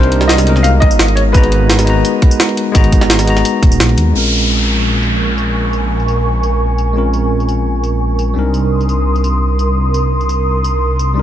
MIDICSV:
0, 0, Header, 1, 7, 480
1, 0, Start_track
1, 0, Tempo, 350877
1, 1840, Time_signature, 4, 2, 24, 8
1, 15354, End_track
2, 0, Start_track
2, 0, Title_t, "Analog synth pad"
2, 0, Program_c, 0, 89
2, 5679, Note_on_c, 0, 70, 78
2, 5680, Note_on_c, 0, 80, 70
2, 5680, Note_on_c, 0, 85, 89
2, 11385, Note_off_c, 0, 70, 0
2, 11385, Note_off_c, 0, 80, 0
2, 11385, Note_off_c, 0, 85, 0
2, 11440, Note_on_c, 0, 87, 73
2, 11441, Note_on_c, 0, 70, 79
2, 11441, Note_on_c, 0, 84, 83
2, 15354, Note_off_c, 0, 70, 0
2, 15354, Note_off_c, 0, 84, 0
2, 15354, Note_off_c, 0, 87, 0
2, 15354, End_track
3, 0, Start_track
3, 0, Title_t, "Grand piano"
3, 0, Program_c, 1, 0
3, 0, Note_on_c, 1, 72, 96
3, 377, Note_on_c, 1, 75, 88
3, 404, Note_off_c, 1, 72, 0
3, 860, Note_on_c, 1, 77, 96
3, 884, Note_off_c, 1, 75, 0
3, 928, Note_off_c, 1, 77, 0
3, 1097, Note_on_c, 1, 75, 90
3, 1555, Note_off_c, 1, 75, 0
3, 1578, Note_on_c, 1, 73, 81
3, 1647, Note_off_c, 1, 73, 0
3, 1817, Note_on_c, 1, 71, 81
3, 5134, Note_off_c, 1, 71, 0
3, 15354, End_track
4, 0, Start_track
4, 0, Title_t, "Tine electric piano"
4, 0, Program_c, 2, 4
4, 0, Control_c, 2, 64, 127
4, 0, Note_on_c, 2, 55, 94
4, 0, Note_on_c, 2, 58, 70
4, 0, Note_on_c, 2, 60, 88
4, 0, Note_on_c, 2, 62, 88
4, 0, Note_on_c, 2, 63, 85
4, 0, Note_on_c, 2, 70, 103
4, 595, Note_off_c, 2, 55, 0
4, 603, Note_off_c, 2, 60, 0
4, 605, Note_on_c, 2, 56, 81
4, 612, Note_off_c, 2, 62, 0
4, 621, Note_off_c, 2, 63, 0
4, 623, Note_on_c, 2, 59, 73
4, 630, Note_off_c, 2, 70, 0
4, 642, Note_on_c, 2, 63, 75
4, 659, Note_on_c, 2, 66, 75
4, 677, Note_on_c, 2, 70, 87
4, 899, Control_c, 2, 64, 0
4, 904, Note_off_c, 2, 58, 0
4, 1120, Control_c, 2, 64, 127
4, 1788, Note_off_c, 2, 56, 0
4, 1804, Note_off_c, 2, 59, 0
4, 1804, Note_on_c, 2, 56, 93
4, 1813, Note_off_c, 2, 63, 0
4, 1822, Note_off_c, 2, 66, 0
4, 1822, Note_on_c, 2, 59, 86
4, 1831, Note_off_c, 2, 70, 0
4, 1840, Note_on_c, 2, 63, 87
4, 1858, Note_on_c, 2, 66, 84
4, 1876, Note_on_c, 2, 82, 107
4, 2509, Note_off_c, 2, 56, 0
4, 2523, Note_off_c, 2, 59, 0
4, 2525, Note_on_c, 2, 56, 82
4, 2532, Note_off_c, 2, 63, 0
4, 2541, Note_off_c, 2, 66, 0
4, 2542, Note_on_c, 2, 59, 76
4, 2550, Note_off_c, 2, 82, 0
4, 2560, Note_on_c, 2, 63, 75
4, 2579, Note_on_c, 2, 66, 73
4, 2596, Note_on_c, 2, 82, 87
4, 3706, Note_off_c, 2, 56, 0
4, 3722, Note_on_c, 2, 56, 93
4, 3724, Note_off_c, 2, 59, 0
4, 3732, Note_off_c, 2, 63, 0
4, 3740, Note_on_c, 2, 59, 90
4, 3742, Note_off_c, 2, 66, 0
4, 3751, Note_off_c, 2, 82, 0
4, 3759, Note_on_c, 2, 63, 87
4, 3776, Note_on_c, 2, 66, 86
4, 3794, Note_on_c, 2, 82, 108
4, 4426, Note_off_c, 2, 56, 0
4, 4442, Note_off_c, 2, 59, 0
4, 4442, Note_on_c, 2, 56, 78
4, 4452, Note_off_c, 2, 63, 0
4, 4460, Note_off_c, 2, 66, 0
4, 4461, Note_on_c, 2, 59, 75
4, 4469, Note_off_c, 2, 82, 0
4, 4480, Note_on_c, 2, 63, 75
4, 4497, Note_on_c, 2, 66, 72
4, 4515, Note_on_c, 2, 82, 89
4, 5628, Note_off_c, 2, 56, 0
4, 5643, Note_off_c, 2, 59, 0
4, 5644, Note_on_c, 2, 56, 67
4, 5652, Note_off_c, 2, 63, 0
4, 5661, Note_off_c, 2, 66, 0
4, 5661, Note_on_c, 2, 60, 59
4, 5670, Note_off_c, 2, 82, 0
4, 5679, Note_on_c, 2, 61, 61
4, 5697, Control_c, 2, 64, 0
4, 5697, Note_on_c, 2, 65, 59
4, 5715, Note_on_c, 2, 70, 75
4, 5910, Control_c, 2, 64, 127
4, 9466, Note_off_c, 2, 56, 0
4, 9482, Note_on_c, 2, 56, 68
4, 9483, Note_off_c, 2, 60, 0
4, 9492, Note_off_c, 2, 61, 0
4, 9501, Note_off_c, 2, 65, 0
4, 9501, Note_on_c, 2, 60, 63
4, 9510, Note_off_c, 2, 70, 0
4, 9520, Note_on_c, 2, 61, 62
4, 9537, Note_on_c, 2, 65, 61
4, 9555, Note_on_c, 2, 70, 76
4, 11394, Note_off_c, 2, 56, 0
4, 11403, Note_off_c, 2, 60, 0
4, 11405, Note_on_c, 2, 55, 69
4, 11412, Note_off_c, 2, 61, 0
4, 11421, Note_off_c, 2, 65, 0
4, 11423, Note_on_c, 2, 60, 63
4, 11430, Note_off_c, 2, 70, 0
4, 11441, Note_on_c, 2, 62, 62
4, 11455, Control_c, 2, 64, 0
4, 11459, Note_on_c, 2, 63, 63
4, 11476, Note_on_c, 2, 70, 77
4, 11696, Control_c, 2, 64, 127
4, 15226, Note_off_c, 2, 55, 0
4, 15243, Note_on_c, 2, 55, 71
4, 15244, Note_off_c, 2, 60, 0
4, 15253, Note_off_c, 2, 62, 0
4, 15261, Note_on_c, 2, 60, 64
4, 15262, Note_off_c, 2, 63, 0
4, 15270, Note_off_c, 2, 70, 0
4, 15279, Note_on_c, 2, 62, 64
4, 15297, Note_on_c, 2, 63, 62
4, 15354, Note_off_c, 2, 55, 0
4, 15354, Note_off_c, 2, 60, 0
4, 15354, Note_off_c, 2, 62, 0
4, 15354, Note_off_c, 2, 63, 0
4, 15354, End_track
5, 0, Start_track
5, 0, Title_t, "Detuned saw bass"
5, 0, Program_c, 3, 39
5, 0, Note_on_c, 3, 36, 99
5, 1120, Note_on_c, 3, 32, 96
5, 1140, Note_off_c, 3, 36, 0
5, 1337, Note_off_c, 3, 32, 0
5, 1361, Note_on_c, 3, 32, 102
5, 1822, Note_off_c, 3, 32, 0
5, 1840, Note_on_c, 3, 32, 93
5, 2781, Note_off_c, 3, 32, 0
5, 3761, Note_on_c, 3, 32, 96
5, 4702, Note_off_c, 3, 32, 0
5, 4959, Note_on_c, 3, 27, 91
5, 5191, Note_off_c, 3, 27, 0
5, 5199, Note_on_c, 3, 34, 88
5, 5417, Note_off_c, 3, 34, 0
5, 5439, Note_on_c, 3, 39, 75
5, 5657, Note_off_c, 3, 39, 0
5, 5679, Note_on_c, 3, 34, 83
5, 11416, Note_off_c, 3, 34, 0
5, 11443, Note_on_c, 3, 36, 83
5, 15354, Note_off_c, 3, 36, 0
5, 15354, End_track
6, 0, Start_track
6, 0, Title_t, "Downlifter"
6, 0, Program_c, 4, 103
6, 5680, Note_on_c, 4, 60, 60
6, 9520, Note_off_c, 4, 60, 0
6, 15354, End_track
7, 0, Start_track
7, 0, Title_t, "Drums"
7, 46, Note_on_c, 9, 42, 35
7, 161, Note_off_c, 9, 42, 0
7, 161, Note_on_c, 9, 42, 59
7, 285, Note_on_c, 9, 40, 50
7, 298, Note_off_c, 9, 42, 0
7, 401, Note_on_c, 9, 38, 112
7, 401, Note_on_c, 9, 42, 88
7, 401, Note_on_c, 9, 54, 50
7, 422, Note_off_c, 9, 40, 0
7, 524, Note_off_c, 9, 42, 0
7, 524, Note_off_c, 9, 54, 0
7, 524, Note_on_c, 9, 40, 44
7, 524, Note_on_c, 9, 42, 35
7, 524, Note_on_c, 9, 54, 58
7, 538, Note_off_c, 9, 38, 0
7, 640, Note_off_c, 9, 42, 0
7, 640, Note_on_c, 9, 42, 62
7, 661, Note_off_c, 9, 40, 0
7, 661, Note_off_c, 9, 54, 0
7, 763, Note_on_c, 9, 40, 30
7, 777, Note_off_c, 9, 42, 0
7, 878, Note_on_c, 9, 42, 86
7, 878, Note_on_c, 9, 54, 50
7, 899, Note_off_c, 9, 40, 0
7, 1015, Note_off_c, 9, 42, 0
7, 1015, Note_off_c, 9, 54, 0
7, 1119, Note_on_c, 9, 36, 101
7, 1119, Note_on_c, 9, 42, 63
7, 1243, Note_on_c, 9, 54, 58
7, 1256, Note_off_c, 9, 36, 0
7, 1256, Note_off_c, 9, 42, 0
7, 1360, Note_off_c, 9, 54, 0
7, 1360, Note_on_c, 9, 38, 107
7, 1360, Note_on_c, 9, 42, 88
7, 1360, Note_on_c, 9, 54, 48
7, 1483, Note_off_c, 9, 42, 0
7, 1483, Note_on_c, 9, 42, 35
7, 1496, Note_off_c, 9, 38, 0
7, 1496, Note_off_c, 9, 54, 0
7, 1599, Note_off_c, 9, 42, 0
7, 1599, Note_on_c, 9, 42, 64
7, 1736, Note_off_c, 9, 42, 0
7, 1839, Note_on_c, 9, 36, 108
7, 1839, Note_on_c, 9, 42, 88
7, 1839, Note_on_c, 9, 54, 48
7, 1963, Note_off_c, 9, 42, 0
7, 1963, Note_on_c, 9, 42, 37
7, 1976, Note_off_c, 9, 36, 0
7, 1976, Note_off_c, 9, 54, 0
7, 2079, Note_off_c, 9, 42, 0
7, 2079, Note_on_c, 9, 42, 65
7, 2215, Note_off_c, 9, 42, 0
7, 2320, Note_on_c, 9, 38, 109
7, 2320, Note_on_c, 9, 42, 95
7, 2320, Note_on_c, 9, 54, 49
7, 2445, Note_off_c, 9, 42, 0
7, 2445, Note_off_c, 9, 54, 0
7, 2445, Note_on_c, 9, 40, 45
7, 2445, Note_on_c, 9, 42, 38
7, 2445, Note_on_c, 9, 54, 61
7, 2457, Note_off_c, 9, 38, 0
7, 2560, Note_off_c, 9, 42, 0
7, 2560, Note_on_c, 9, 42, 64
7, 2582, Note_off_c, 9, 40, 0
7, 2582, Note_off_c, 9, 54, 0
7, 2697, Note_off_c, 9, 42, 0
7, 2801, Note_on_c, 9, 42, 94
7, 2801, Note_on_c, 9, 54, 50
7, 2937, Note_off_c, 9, 42, 0
7, 2937, Note_off_c, 9, 54, 0
7, 3038, Note_on_c, 9, 42, 66
7, 3040, Note_on_c, 9, 36, 96
7, 3164, Note_on_c, 9, 54, 60
7, 3175, Note_off_c, 9, 42, 0
7, 3177, Note_off_c, 9, 36, 0
7, 3280, Note_off_c, 9, 54, 0
7, 3280, Note_on_c, 9, 38, 107
7, 3280, Note_on_c, 9, 42, 90
7, 3280, Note_on_c, 9, 54, 48
7, 3405, Note_off_c, 9, 42, 0
7, 3405, Note_on_c, 9, 42, 37
7, 3417, Note_off_c, 9, 38, 0
7, 3417, Note_off_c, 9, 54, 0
7, 3520, Note_off_c, 9, 42, 0
7, 3520, Note_on_c, 9, 42, 67
7, 3657, Note_off_c, 9, 42, 0
7, 3760, Note_on_c, 9, 42, 92
7, 3760, Note_on_c, 9, 54, 48
7, 3761, Note_on_c, 9, 36, 110
7, 3884, Note_off_c, 9, 42, 0
7, 3884, Note_on_c, 9, 42, 38
7, 3896, Note_off_c, 9, 54, 0
7, 3897, Note_off_c, 9, 36, 0
7, 4000, Note_on_c, 9, 36, 56
7, 4001, Note_off_c, 9, 42, 0
7, 4001, Note_on_c, 9, 42, 67
7, 4001, Note_on_c, 9, 54, 26
7, 4123, Note_on_c, 9, 40, 52
7, 4137, Note_off_c, 9, 36, 0
7, 4138, Note_off_c, 9, 42, 0
7, 4138, Note_off_c, 9, 54, 0
7, 4240, Note_on_c, 9, 38, 117
7, 4240, Note_on_c, 9, 42, 93
7, 4240, Note_on_c, 9, 54, 52
7, 4260, Note_off_c, 9, 40, 0
7, 4363, Note_off_c, 9, 42, 0
7, 4363, Note_off_c, 9, 54, 0
7, 4363, Note_on_c, 9, 40, 47
7, 4363, Note_on_c, 9, 42, 38
7, 4363, Note_on_c, 9, 54, 61
7, 4376, Note_off_c, 9, 38, 0
7, 4479, Note_off_c, 9, 42, 0
7, 4479, Note_on_c, 9, 42, 64
7, 4500, Note_off_c, 9, 40, 0
7, 4500, Note_off_c, 9, 54, 0
7, 4605, Note_off_c, 9, 42, 0
7, 4605, Note_on_c, 9, 40, 33
7, 4605, Note_on_c, 9, 42, 38
7, 4721, Note_off_c, 9, 42, 0
7, 4721, Note_on_c, 9, 42, 94
7, 4721, Note_on_c, 9, 54, 49
7, 4741, Note_off_c, 9, 40, 0
7, 4857, Note_off_c, 9, 42, 0
7, 4857, Note_off_c, 9, 54, 0
7, 4960, Note_on_c, 9, 36, 104
7, 4961, Note_on_c, 9, 42, 68
7, 4961, Note_on_c, 9, 54, 29
7, 5085, Note_off_c, 9, 54, 0
7, 5085, Note_on_c, 9, 54, 58
7, 5096, Note_off_c, 9, 36, 0
7, 5098, Note_off_c, 9, 42, 0
7, 5200, Note_off_c, 9, 54, 0
7, 5200, Note_on_c, 9, 38, 108
7, 5200, Note_on_c, 9, 42, 93
7, 5200, Note_on_c, 9, 54, 49
7, 5325, Note_off_c, 9, 42, 0
7, 5325, Note_on_c, 9, 42, 37
7, 5337, Note_off_c, 9, 38, 0
7, 5337, Note_off_c, 9, 54, 0
7, 5440, Note_off_c, 9, 42, 0
7, 5440, Note_on_c, 9, 42, 69
7, 5440, Note_on_c, 9, 54, 29
7, 5576, Note_off_c, 9, 42, 0
7, 5576, Note_off_c, 9, 54, 0
7, 5918, Note_on_c, 9, 54, 50
7, 6055, Note_off_c, 9, 54, 0
7, 6282, Note_on_c, 9, 54, 23
7, 6399, Note_off_c, 9, 54, 0
7, 6399, Note_on_c, 9, 54, 50
7, 6535, Note_off_c, 9, 54, 0
7, 6878, Note_on_c, 9, 54, 51
7, 7015, Note_off_c, 9, 54, 0
7, 7358, Note_on_c, 9, 54, 53
7, 7495, Note_off_c, 9, 54, 0
7, 7841, Note_on_c, 9, 54, 48
7, 7977, Note_off_c, 9, 54, 0
7, 8205, Note_on_c, 9, 54, 23
7, 8322, Note_off_c, 9, 54, 0
7, 8322, Note_on_c, 9, 54, 49
7, 8459, Note_off_c, 9, 54, 0
7, 8801, Note_on_c, 9, 54, 50
7, 8938, Note_off_c, 9, 54, 0
7, 9281, Note_on_c, 9, 54, 51
7, 9417, Note_off_c, 9, 54, 0
7, 9761, Note_on_c, 9, 54, 50
7, 9898, Note_off_c, 9, 54, 0
7, 10124, Note_on_c, 9, 54, 23
7, 10240, Note_off_c, 9, 54, 0
7, 10240, Note_on_c, 9, 54, 48
7, 10377, Note_off_c, 9, 54, 0
7, 10720, Note_on_c, 9, 54, 49
7, 10857, Note_off_c, 9, 54, 0
7, 11201, Note_on_c, 9, 54, 50
7, 11338, Note_off_c, 9, 54, 0
7, 11681, Note_on_c, 9, 54, 49
7, 11818, Note_off_c, 9, 54, 0
7, 12046, Note_on_c, 9, 54, 23
7, 12162, Note_off_c, 9, 54, 0
7, 12162, Note_on_c, 9, 54, 48
7, 12298, Note_off_c, 9, 54, 0
7, 12526, Note_on_c, 9, 54, 24
7, 12642, Note_off_c, 9, 54, 0
7, 12642, Note_on_c, 9, 54, 51
7, 12778, Note_off_c, 9, 54, 0
7, 13121, Note_on_c, 9, 54, 51
7, 13257, Note_off_c, 9, 54, 0
7, 13601, Note_on_c, 9, 54, 52
7, 13738, Note_off_c, 9, 54, 0
7, 13965, Note_on_c, 9, 54, 25
7, 14080, Note_off_c, 9, 54, 0
7, 14080, Note_on_c, 9, 54, 52
7, 14217, Note_off_c, 9, 54, 0
7, 14561, Note_on_c, 9, 54, 52
7, 14698, Note_off_c, 9, 54, 0
7, 15040, Note_on_c, 9, 54, 56
7, 15177, Note_off_c, 9, 54, 0
7, 15354, End_track
0, 0, End_of_file